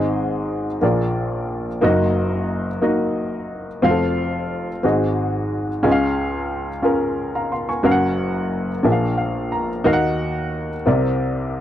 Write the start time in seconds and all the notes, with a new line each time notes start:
Already playing: G#1 G#2 C4 D#4 G#4 D#5
0.81 A#1 A#2 A#3 F4 G#4 D5
1.81 F#1 F#2 A#3 D#4 F#4 D#5
2.82 A#3 D#4 F#4 D#5
3.82 F1 F2 C4 F4 F#4 F5
3.90 A4
4.83 G#1 G#2 C4 F#4 G#4 D#5
5.83 C#2 C#3 C#4 F4 G#4 D#5
5.91 F5
6.83 C#4 F4 G#4 A#4
7.35 F5 A#5
7.52 F5 C6
7.69 G#5 C#6
7.83 F#1 F#2 C#4 F#4 A#4 F5
7.91 F#5
8.83 A#1 A#2 D4 G#4 A#4 E5
8.92 F5
9.18 F5
9.52 A#5
9.84 D#2 D#3 D#4 F#4 A#4 F5
9.93 F#5
10.86 C2 C3 C4 E4 A#4 D5